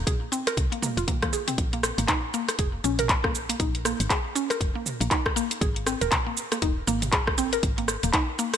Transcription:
0.07 synth pluck G#4, kick, closed hi-hat, mid tom, cabasa
0.32 synth pluck C4, cabasa
0.47 synth pluck A#4, cross-stick, closed hi-hat, cabasa
0.57 fm bass C2, kick, closed hi-hat, cabasa
0.72 synth pluck A#3, closed hi-hat
0.82 synth pluck A#3, mid tom, high tom, cabasa
0.97 fm bass F1, synth pluck F4, closed hi-hat, cabasa
1.08 synth pluck A#3, kick, closed hi-hat, mid tom, cabasa
1.22 synth pluck A#3, kick, cross-stick, closed hi-hat, mid tom
1.33 synth pluck G#4, cabasa
1.48 synth pluck C4, closed hi-hat, mid tom, cabasa
1.58 fm bass A#1, kick, closed hi-hat, cabasa
1.73 synth pluck A#3, closed hi-hat
1.83 cross-stick, cabasa
1.98 fm bass G#1, synth pluck A#3, closed hi-hat, cabasa
2.08 synth pluck D#4, kick, clap, closed hi-hat, mid tom, cabasa
2.34 synth pluck A#3, cabasa
2.49 cross-stick, closed hi-hat, cabasa
2.59 fm bass F1, synth pluck G#4, kick, closed hi-hat, cabasa
2.84 fm bass A#1, synth pluck C#4, cabasa
2.99 synth pluck A#4, closed hi-hat, mid tom, cabasa
3.09 kick, clap, closed hi-hat, cabasa
3.24 synth pluck A#3, kick, cross-stick
3.35 cabasa
3.49 synth pluck A#3, closed hi-hat, cabasa
3.60 fm bass A#1, synth pluck D#4, kick, closed hi-hat, cabasa
3.75 closed hi-hat
3.85 synth pluck A#3, cross-stick, cabasa
4.00 fm bass G#1, closed hi-hat, cabasa
4.10 synth pluck G#4, kick, clap, closed hi-hat, cabasa
4.35 synth pluck C#4, cabasa
4.50 synth pluck A#4, cross-stick, closed hi-hat, cabasa
4.61 fm bass F1, kick, closed hi-hat, cabasa
4.75 synth pluck A#3
4.86 mid tom, cabasa
5.00 fm bass A#1, synth pluck A#3, closed hi-hat, cabasa
5.11 synth pluck D#4, kick, clap, closed hi-hat, cabasa
5.26 kick, cross-stick
5.36 synth pluck A#3, cabasa
5.51 closed hi-hat, cabasa
5.61 fm bass G#1, synth pluck G#4, kick, closed hi-hat, cabasa
5.76 closed hi-hat
5.87 synth pluck C4, cross-stick, cabasa
6.01 fm bass D#1, synth pluck A#4, closed hi-hat, cabasa
6.12 kick, clap, closed hi-hat, mid tom, cabasa
6.27 synth pluck A#3
6.37 cabasa
6.52 synth pluck A#3, cross-stick, closed hi-hat, cabasa
6.62 fm bass D#1, synth pluck D#4, kick, closed hi-hat, cabasa
6.87 fm bass G#1, synth pluck A#3, cabasa
7.02 closed hi-hat, mid tom, cabasa
7.12 synth pluck G#4, kick, clap, closed hi-hat, cabasa
7.27 kick, cross-stick
7.38 synth pluck C4, cabasa
7.53 synth pluck A#4, closed hi-hat, cabasa
7.63 fm bass G#1, kick, closed hi-hat, cabasa
7.78 synth pluck A#3, closed hi-hat
7.88 cross-stick, cabasa
8.03 fm bass D#1, synth pluck A#3, closed hi-hat, cabasa
8.13 synth pluck D#4, kick, clap, closed hi-hat, cabasa
8.39 synth pluck A#3, cabasa
8.54 cross-stick, closed hi-hat, cabasa

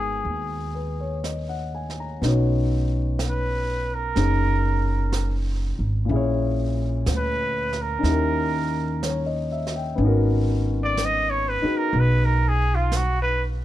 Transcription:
Already playing: upright bass G#1, grand piano G#3 B3 D#4 F#4 A#4, muted trumpet G#4
0.25 upright bass D#2, brush sweep
0.74 grand piano B4
1.00 grand piano C#5
1.24 grand piano D#5, brush sweep, snare, hi-hat pedal
1.49 grand piano F#5
1.75 grand piano G#5
1.90 snare
2.00 grand piano A#5
2.21 upright bass B1, grand piano B3 C#4 D#4, brush sweep, snare
2.25 grand piano F#4 C#5
3.19 brush sweep, snare, hi-hat pedal
3.29 muted trumpet B4
3.94 muted trumpet A#4
4.15 upright bass F#1, grand piano C#4 D#4 G#4, brush sweep, snare
5.12 brush sweep, snare, hi-hat pedal
5.79 upright bass G#1
6.05 grand piano A#2 C#4
6.09 upright bass A#1, grand piano E4 G#4, brush sweep
6.16 grand piano C#5
7.06 upright bass D2, brush sweep, snare, hi-hat pedal
7.17 muted trumpet B4
7.73 snare
7.81 muted trumpet A#4
7.99 grand piano C#4 D#4
8.03 upright bass D#2, grand piano E4, brush sweep, snare
8.07 grand piano G4 A#4
9.03 grand piano C#5, brush sweep, snare, hi-hat pedal
9.26 grand piano D#5
9.52 grand piano E5
9.67 snare
9.76 grand piano G5
9.95 upright bass G#1, grand piano B3 C#4
9.99 grand piano D#4, brush sweep
10.04 grand piano F#4 A#4
10.83 muted trumpet D5
10.97 brush sweep, snare, hi-hat pedal
11.05 muted trumpet D#5
11.30 muted trumpet C#5
11.49 muted trumpet B4
11.62 grand piano D#4 F#4 G#4 B4, muted upright bass stroke
11.77 muted trumpet A#4
11.93 upright bass B1, brush sweep
11.99 muted trumpet B4
12.25 muted trumpet A#4
12.48 muted trumpet G#4
12.75 muted trumpet F4
12.92 brush sweep, snare, hi-hat pedal
12.96 muted trumpet F#4
13.22 muted trumpet B4

